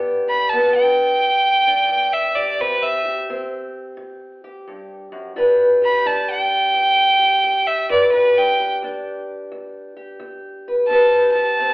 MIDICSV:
0, 0, Header, 1, 3, 480
1, 0, Start_track
1, 0, Key_signature, 1, "minor"
1, 0, Tempo, 690449
1, 1810, Time_signature, 4, 2, 24, 8
1, 8160, End_track
2, 0, Start_track
2, 0, Title_t, "Fiddle"
2, 0, Program_c, 0, 110
2, 205, Note_on_c, 0, 83, 75
2, 344, Note_on_c, 0, 81, 75
2, 355, Note_off_c, 0, 83, 0
2, 511, Note_off_c, 0, 81, 0
2, 522, Note_on_c, 0, 79, 92
2, 1483, Note_on_c, 0, 76, 82
2, 1494, Note_off_c, 0, 79, 0
2, 1636, Note_on_c, 0, 74, 76
2, 1647, Note_off_c, 0, 76, 0
2, 1815, Note_on_c, 0, 71, 78
2, 1826, Note_off_c, 0, 74, 0
2, 1964, Note_on_c, 0, 76, 80
2, 1975, Note_off_c, 0, 71, 0
2, 2223, Note_off_c, 0, 76, 0
2, 4067, Note_on_c, 0, 83, 79
2, 4216, Note_on_c, 0, 81, 77
2, 4227, Note_off_c, 0, 83, 0
2, 4369, Note_off_c, 0, 81, 0
2, 4383, Note_on_c, 0, 79, 97
2, 5329, Note_on_c, 0, 76, 81
2, 5340, Note_off_c, 0, 79, 0
2, 5485, Note_off_c, 0, 76, 0
2, 5500, Note_on_c, 0, 74, 74
2, 5641, Note_off_c, 0, 74, 0
2, 5645, Note_on_c, 0, 71, 77
2, 5824, Note_on_c, 0, 79, 84
2, 5835, Note_off_c, 0, 71, 0
2, 6075, Note_off_c, 0, 79, 0
2, 7560, Note_on_c, 0, 81, 82
2, 7867, Note_off_c, 0, 81, 0
2, 7871, Note_on_c, 0, 81, 77
2, 8160, Note_off_c, 0, 81, 0
2, 8160, End_track
3, 0, Start_track
3, 0, Title_t, "Steel-string acoustic guitar"
3, 0, Program_c, 1, 25
3, 0, Note_on_c, 1, 40, 70
3, 0, Note_on_c, 1, 59, 53
3, 0, Note_on_c, 1, 62, 49
3, 0, Note_on_c, 1, 67, 60
3, 182, Note_off_c, 1, 62, 0
3, 190, Note_on_c, 1, 62, 55
3, 330, Note_off_c, 1, 40, 0
3, 365, Note_off_c, 1, 59, 0
3, 365, Note_on_c, 1, 40, 74
3, 368, Note_on_c, 1, 59, 63
3, 814, Note_off_c, 1, 40, 0
3, 833, Note_on_c, 1, 40, 66
3, 1154, Note_off_c, 1, 62, 0
3, 1162, Note_on_c, 1, 62, 58
3, 1288, Note_off_c, 1, 40, 0
3, 1314, Note_on_c, 1, 40, 72
3, 1641, Note_off_c, 1, 67, 0
3, 1643, Note_on_c, 1, 67, 67
3, 1768, Note_off_c, 1, 40, 0
3, 1789, Note_off_c, 1, 62, 0
3, 1806, Note_on_c, 1, 45, 68
3, 1809, Note_off_c, 1, 59, 0
3, 1812, Note_on_c, 1, 60, 52
3, 1813, Note_off_c, 1, 67, 0
3, 1813, Note_on_c, 1, 67, 58
3, 2119, Note_off_c, 1, 67, 0
3, 2121, Note_on_c, 1, 67, 52
3, 2255, Note_off_c, 1, 45, 0
3, 2285, Note_off_c, 1, 60, 0
3, 2289, Note_on_c, 1, 45, 77
3, 2293, Note_on_c, 1, 60, 64
3, 2736, Note_off_c, 1, 45, 0
3, 2759, Note_on_c, 1, 45, 65
3, 3084, Note_off_c, 1, 67, 0
3, 3087, Note_on_c, 1, 67, 52
3, 3211, Note_off_c, 1, 45, 0
3, 3250, Note_on_c, 1, 43, 59
3, 3556, Note_off_c, 1, 43, 0
3, 3559, Note_on_c, 1, 42, 67
3, 3712, Note_off_c, 1, 60, 0
3, 3722, Note_off_c, 1, 42, 0
3, 3725, Note_on_c, 1, 40, 70
3, 3726, Note_off_c, 1, 67, 0
3, 3727, Note_on_c, 1, 62, 56
3, 3729, Note_on_c, 1, 67, 54
3, 3739, Note_on_c, 1, 71, 59
3, 4041, Note_off_c, 1, 67, 0
3, 4044, Note_on_c, 1, 67, 55
3, 4175, Note_off_c, 1, 40, 0
3, 4208, Note_on_c, 1, 40, 74
3, 4209, Note_off_c, 1, 62, 0
3, 4212, Note_on_c, 1, 62, 65
3, 4657, Note_off_c, 1, 40, 0
3, 4686, Note_on_c, 1, 40, 66
3, 4998, Note_off_c, 1, 67, 0
3, 5001, Note_on_c, 1, 67, 54
3, 5135, Note_off_c, 1, 40, 0
3, 5170, Note_on_c, 1, 40, 69
3, 5489, Note_off_c, 1, 71, 0
3, 5491, Note_on_c, 1, 71, 70
3, 5618, Note_off_c, 1, 40, 0
3, 5632, Note_off_c, 1, 62, 0
3, 5650, Note_on_c, 1, 40, 73
3, 5655, Note_on_c, 1, 62, 57
3, 5657, Note_off_c, 1, 67, 0
3, 5660, Note_on_c, 1, 67, 55
3, 5974, Note_off_c, 1, 67, 0
3, 5976, Note_on_c, 1, 67, 54
3, 6097, Note_off_c, 1, 40, 0
3, 6133, Note_off_c, 1, 62, 0
3, 6134, Note_on_c, 1, 40, 77
3, 6143, Note_on_c, 1, 62, 63
3, 6580, Note_off_c, 1, 40, 0
3, 6615, Note_on_c, 1, 40, 69
3, 6925, Note_off_c, 1, 67, 0
3, 6927, Note_on_c, 1, 67, 51
3, 7060, Note_off_c, 1, 40, 0
3, 7088, Note_on_c, 1, 40, 71
3, 7421, Note_off_c, 1, 71, 0
3, 7424, Note_on_c, 1, 71, 65
3, 7536, Note_off_c, 1, 40, 0
3, 7557, Note_off_c, 1, 62, 0
3, 7572, Note_on_c, 1, 45, 68
3, 7574, Note_on_c, 1, 60, 55
3, 7580, Note_off_c, 1, 67, 0
3, 7583, Note_off_c, 1, 71, 0
3, 7583, Note_on_c, 1, 67, 54
3, 7586, Note_on_c, 1, 71, 58
3, 7888, Note_off_c, 1, 67, 0
3, 7891, Note_on_c, 1, 67, 52
3, 8018, Note_off_c, 1, 45, 0
3, 8059, Note_on_c, 1, 45, 78
3, 8061, Note_off_c, 1, 60, 0
3, 8064, Note_on_c, 1, 60, 60
3, 8160, Note_off_c, 1, 45, 0
3, 8160, Note_off_c, 1, 60, 0
3, 8160, Note_off_c, 1, 67, 0
3, 8160, Note_off_c, 1, 71, 0
3, 8160, End_track
0, 0, End_of_file